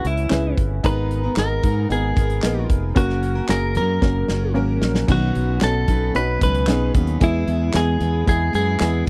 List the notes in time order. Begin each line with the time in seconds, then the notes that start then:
Already playing: C#3 C#4 E4 G#4 B4
0.05 C#2 E4, closed hi-hat
0.17 closed hi-hat
0.30 C#2 C#4 E4 G#4 B4, snare, clap, closed hi-hat
0.57 G1, kick, closed hi-hat
0.83 G#1 G#2 G#3 B3 D#4 G#4 A#4 B4 A#5, kick, closed hi-hat
1.11 closed hi-hat
1.23 B3 D#4 A#4
1.36 G#1 B3 D#4 G#4 A#4, snare, clap, closed hi-hat
1.63 G#2 G#3 B3 D#4 A#4, kick, closed hi-hat
1.89 G#1 B3 D#4 G#4 A#4, closed hi-hat
2.16 G#1 G#3 B3 D#4 A#4, kick, closed hi-hat
2.30 closed hi-hat
2.42 A#1 G#3 B3 D#4 G#4 A#4, snare, clap, closed hi-hat
2.70 F1, kick, closed hi-hat
2.95 F#1 F#3 A#3 C#4 F#4 A#4, kick, closed hi-hat
3.09 snare
3.23 closed hi-hat
3.35 C#4 F#4 A#4
3.48 F#1 A#3 C#4 F#4 G#4 A#4, snare, clap, closed hi-hat
3.75 F#2 F#3 C#4 F#4 A#4, closed hi-hat
4.01 F#1 A#3 C#4 F#4 A#4, kick, snare
4.28 F#1 F#3 C#4 F#4 A#4, snare
4.54 G#1 F#3 A#3 C#4 F#4 A#4
4.82 A#1, snare
4.95 snare
5.07 B1 B2 D#3 F#3 B3 C#4 D#4 F#4 B4, kick, crash
5.12 F#4
5.35 B1 F#3 C#4 D#4 B4, closed hi-hat
5.61 B1 B3 C#4 D#4 F#4 A4, snare, clap, closed hi-hat
5.87 B1 F#3 C#4 D#4 B4, kick, closed hi-hat
6.14 B1 B3 C#4 D#4 F#4 B4, closed hi-hat
6.41 C#2 F#3 C#4 D#4 B4, kick, closed hi-hat
6.55 closed hi-hat
6.67 B1 F#3 B3 C#4 D#4 G#4 B4, snare, clap, closed hi-hat
6.94 D#2 F#3 C#4 D#4 B4, kick, closed hi-hat
7.07 closed hi-hat
7.20 E2 E3 G#3 B3 E4 G#4, kick, closed hi-hat
7.47 E2 G#3 B3 E4 G#4, closed hi-hat
7.73 E2 G#3 B3 E4 G#4, snare, clap, closed hi-hat
8.00 E2 G#3 B3 E4 G#4, closed hi-hat
8.26 E2 G#3 B3 E4 G#4, kick, closed hi-hat
8.53 F#2 G#3 B3 E4 G#4, closed hi-hat
8.79 E2 G#3 B3 E4 G#4, snare, clap, closed hi-hat
9.06 G#3